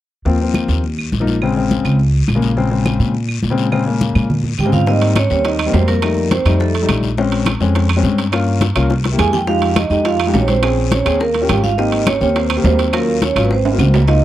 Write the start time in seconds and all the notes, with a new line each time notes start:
0.25 D#2 F3 A#3 C4, high conga, long guiro
0.40 F3 A#3 C4, high conga
0.54 high conga, short guiro, claves
0.68 D#2, short guiro
0.84 high conga, long guiro
0.98 high conga, claves
1.12 A#1, high conga, short guiro
1.20 F3 A#3 D#4
1.27 high conga, short guiro
1.42 C#3 G#3 C4, long guiro, claves
1.56 C#3 G#3 C4, high conga
1.71 high conga, short guiro
1.84 C#2, high conga, short guiro, claves
1.99 high conga, long guiro
2.14 high conga
2.28 A#1, high conga, short guiro, claves
2.35 C#3 G#3 A#3
2.42 high conga, short guiro
2.57 C#3 G#3 C4, high conga, long guiro
2.70 C#3 G#3 C4, high conga
2.86 high conga, short guiro, claves
2.99 A#2, high conga, short guiro
3.14 high conga, long guiro
3.29 high conga, claves
3.43 A#2, high conga, short guiro
3.50 C#3 G#3 C4
3.58 short guiro
3.72 C#3 G#3 C4, high conga, long guiro, claves
3.86 C#3 G#3 A#3, high conga
4.01 high conga, short guiro
4.15 A#2, high conga, short guiro, claves
4.30 low conga, long guiro
4.44 low conga
4.58 G#2 G4 G5, low conga, short guiro, claves
4.65 C#3 G#3 C4
4.72 F4 F5, low conga, short guiro
4.86 G3 A#3 C4 D#4 D#5, high bongo, high conga, long guiro
5.01 high bongo, high conga, high timbale
5.15 C#4 C#5, high bongo, high conga, high timbale, short guiro, claves
5.30 D#2 G3 A#3 C4 C#4 C#5, high conga, short guiro
5.44 D#4 D#5, high bongo, high conga, high timbale, long guiro
5.59 high bongo, high conga, high timbale, claves
5.66 G3 A#3 C4
5.73 F2 C4 C5, high bongo, low bongo, high conga, low timbale, short guiro
5.88 A#3 A#4, high bongo, high conga, high timbale, short guiro
6.02 G3 A3 D#4, high bongo, high conga, high timbale, long guiro, claves
6.17 high bongo, high conga
6.31 C4 C5, high bongo, high conga, high timbale, short guiro
6.45 F2 G3 A3 D#4, high conga, high timbale, short guiro, claves
6.60 A3 A4, high bongo, high conga, long guiro
6.74 high bongo, high conga, high timbale
6.82 G3 A3 D#4
6.89 A#1, high bongo, low bongo, high conga, high timbale, short guiro, claves
7.03 high bongo, high conga, short guiro
7.17 G#3 C4 C#4, high bongo, high conga, long guiro
7.32 high bongo, high conga, high timbale
7.46 high bongo, high conga, high timbale, short guiro, claves
7.60 F2 G#3 C4 C#4, high conga, short guiro
7.75 high bongo, high conga, high timbale, long guiro
7.89 high bongo, high conga, high timbale, claves
7.96 G#3 C4 C#4
8.03 G2, high bongo, low bongo, high conga, short guiro
8.18 high bongo, high timbale, short guiro
8.32 A#3 C#4 F4, high bongo, high conga, high timbale, long guiro, claves
8.47 high bongo, high conga
8.61 high bongo, high conga, high timbale, short guiro
8.75 C2 A#3 C#4 F4, high conga, high timbale, short guiro, claves
8.90 high bongo, high conga, long guiro
9.04 high bongo, high conga, high timbale
9.12 A#3 E4 G4
9.18 F2 G#4 G#5, low bongo, high conga, high timbale, short guiro, claves
9.32 G4 G5, low bongo, short guiro
9.47 G#3 D#4 F4 G4 F5, high bongo, high conga, long guiro
9.62 high bongo, high conga, high timbale
9.76 D#4 D#5, high bongo, high conga, high timbale, short guiro, claves
9.90 F2 G#3 D#4 G4 D#5, high conga, short guiro
10.05 F4 F5, high bongo, high conga, high timbale, long guiro
10.20 high bongo, high conga, high timbale, claves
10.26 G#3 D#4 G4
10.34 A#1 C#4 C#5, high bongo, low bongo, high conga, low timbale, short guiro
10.48 C4 C5, high bongo, high conga, high timbale, short guiro
10.62 C4 C#4 G#4, high bongo, high conga, high timbale, long guiro, claves
10.78 high bongo, high conga
10.92 C#4 C#5, high bongo, high conga, high timbale, short guiro
11.05 D#2 C4 C#4 G#4, high conga, high timbale, short guiro, claves
11.20 A#3 A#4, high bongo, high conga, long guiro
11.34 high bongo, high conga, high timbale
11.42 C#4 F4 G4
11.49 G#1 G4 G5, high bongo, low bongo, high conga, high timbale, short guiro, claves
11.64 F4 F5, high bongo, high conga, short guiro
11.78 A#3 C4 D#4 G4 D#5, high bongo, high conga, long guiro
11.92 high bongo, high conga, high timbale
12.07 C#4 C#5, high bongo, high conga, high timbale, short guiro, claves
12.20 D#2 A#3 C4 C#4 G4 C#5, high conga, short guiro
12.36 C4 C5, high bongo, high conga, high timbale, long guiro
12.50 high bongo, high conga, high timbale, claves
12.56 A#3 C4 G4
12.64 D#2 C4 C5, high bongo, low bongo, high conga, low timbale, short guiro
12.79 high bongo, high timbale, short guiro
12.93 F#3 A#3 C#4 F4 A#4, high bongo, high conga, high timbale, long guiro, claves
13.07 high bongo, high conga
13.22 C#4 C#5, high bongo, high conga, high timbale, short guiro
13.36 G#1 F#3 C#4 F4, high conga, high timbale, short guiro, claves
13.43 B3 B4
13.51 C4 C5, high bongo, high conga, long guiro
13.65 high bongo, high conga, high timbale
13.72 A#3 C4 F#4
13.78 C#2, high bongo, low bongo, high conga, high timbale, short guiro, claves
13.94 high bongo, low timbale, short guiro
14.08 A#3 D#4 F4 D#5, high bongo, high conga, high timbale, long guiro